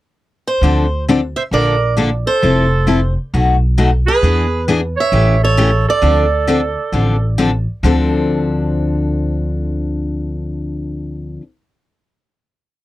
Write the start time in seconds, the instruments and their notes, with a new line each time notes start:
0.47 steel-string acoustic guitar C5
0.61 upright bass D2, steel-string acoustic guitar D3 F3 C4 D4 A4
1.08 steel-string acoustic guitar D3 F3 C4 D4 A4
1.36 clarinet C5, steel-string acoustic guitar E5
1.51 upright bass A#1, steel-string acoustic guitar D3 F3 A#3 D4 A4 D5, clarinet A#4
1.97 steel-string acoustic guitar D3 F3 A#3 D4 A4
2.27 clarinet A4, steel-string acoustic guitar C5
2.42 upright bass F1, steel-string acoustic guitar F3 C4 E4 A4
2.87 steel-string acoustic guitar F3 C4 E4 A4
3.34 upright bass B1, steel-string acoustic guitar B2 F#3 A3 D#4 F#4
3.78 steel-string acoustic guitar B2 F#3 A3 D#4 F#4
4.06 clarinet G#4, steel-string acoustic guitar B4
4.22 upright bass E2, steel-string acoustic guitar E3 B3 D4 G#4
4.68 steel-string acoustic guitar E3 B3 D4 G#4
4.97 clarinet C#5, steel-string acoustic guitar E5
5.12 upright bass A1, steel-string acoustic guitar C#3 E3 A3 C#4 G4
5.43 clarinet A4, steel-string acoustic guitar C#5
5.57 steel-string acoustic guitar C#3 E3 A3 C#4 G4
5.89 clarinet A4, steel-string acoustic guitar D5
6.02 upright bass D2, steel-string acoustic guitar D3 F3 C4 D4 A4
6.48 steel-string acoustic guitar D3 F3 C4 D4 A4
6.92 upright bass A1, steel-string acoustic guitar D3 F3 C4 D4 A4
7.38 steel-string acoustic guitar D3 F3 C4 D4 A4
7.83 upright bass D2, steel-string acoustic guitar D3 F3 C4 D4 A4